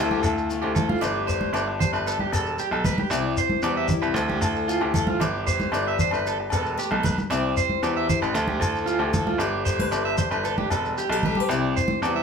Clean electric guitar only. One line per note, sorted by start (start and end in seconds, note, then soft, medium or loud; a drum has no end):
0.11 0.22 G4 medium
0.23 0.48 A4 medium
0.62 0.74 G4 medium
0.75 0.88 A4 medium
0.89 1.01 F4 medium
1.01 1.26 D5 medium
1.27 1.52 C5 medium
1.54 1.67 D5 medium
1.68 muted clean electric guitar stroke medium
1.80 1.93 C5 medium
1.93 2.06 B4 medium
2.07 2.19 A4 medium
2.20 2.32 G4 medium
2.34 2.58 A4 medium
2.60 2.72 G4 medium
2.72 2.84 A4 medium
2.85 2.98 B4 medium
2.99 3.11 G4 medium
3.12 3.36 D5 medium
3.38 3.62 C5 medium
3.64 3.76 D5 medium
3.77 3.89 E5 medium
3.89 muted clean electric guitar stroke medium
4.02 4.14 B4 medium
4.16 4.28 A4 medium
4.29 4.41 G4 medium
4.42 4.67 A4 medium
4.68 4.81 F4 medium
4.81 4.93 G4 medium
4.95 5.07 A4 medium
5.08 5.20 F4 medium
5.21 5.46 D5 medium
5.47 5.72 C5 medium
5.73 5.86 D5 medium
5.88 5.99 E5 medium
6.01 6.12 C5 medium
6.13 6.25 B4 medium
6.27 6.39 A4 medium
6.40 muted clean electric guitar stroke medium
6.53 6.77 A4 medium
6.79 6.91 G4 medium
6.92 7.04 A4 medium
7.05 7.17 B4 medium
7.19 muted clean electric guitar stroke medium
7.31 7.55 D5 medium
7.57 7.82 C5 medium
7.84 7.96 D5 medium
7.97 8.09 E5 medium
8.09 8.21 C5 medium
8.22 8.34 B4 medium
8.35 8.47 A4 medium
8.48 8.60 G4 medium
8.61 8.86 A4 medium
8.86 8.99 F4 medium
9.00 9.12 G4 medium
9.14 9.26 A4 medium
9.27 9.39 F4 medium
9.40 9.65 D5 medium
9.65 9.91 C5 medium
9.92 10.05 D5 medium
10.05 10.18 E5 medium
10.18 10.31 C5 medium
10.31 10.44 B4 medium
10.45 10.57 A4 medium
10.58 10.70 G4 medium
10.71 10.96 A4 medium
10.98 11.10 G4 medium
11.11 11.23 A4 medium
11.25 11.37 B4 medium
11.37 11.49 G4 medium
11.50 11.75 D5 medium
11.76 12.01 C5 medium
12.03 12.15 D5 medium
12.16 12.23 E5 medium